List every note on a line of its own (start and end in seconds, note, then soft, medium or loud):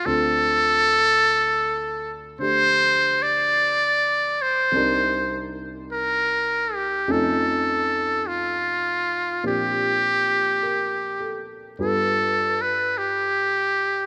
0.05 4.74 D2 soft
0.05 2.37 D3 soft
0.05 4.75 C4 soft
0.05 4.75 F4 soft
0.05 2.23 A4 medium
0.05 4.75 A4 soft
2.39 4.73 D3 soft
2.39 4.74 A3 soft
2.39 4.73 D4 soft
2.39 4.75 G4 soft
2.39 3.24 C5 medium
3.22 4.43 D5 medium
4.42 5.56 C5 medium
4.72 7.07 C2 soft
4.72 7.08 C3 soft
4.72 7.08 D4 soft
4.72 7.08 D#4 soft
4.77 7.10 A#4 soft
5.92 6.76 A#4 medium
6.75 7.13 G4 medium
7.08 9.43 F2 soft
7.08 9.42 F3 soft
7.08 9.43 A3 soft
7.08 9.43 C#4 soft
7.08 9.44 D#4 soft
7.08 9.44 A4 medium
7.08 8.29 A4 medium
8.28 9.44 F4 medium
9.43 11.78 A#2 soft
9.43 11.78 F3 soft
9.43 11.78 C4 soft
9.43 11.78 D4 soft
9.43 11.79 G4 soft
9.43 11.59 G4 medium
10.63 11.56 A#4 soft
11.20 11.79 A4 soft
11.79 14.06 G2 soft
11.79 14.06 G3 soft
11.79 14.06 B3 soft
11.79 14.06 F4 soft
11.79 12.63 A4 medium
11.79 14.06 A4 soft
12.61 12.99 B4 medium
12.98 14.06 G4 medium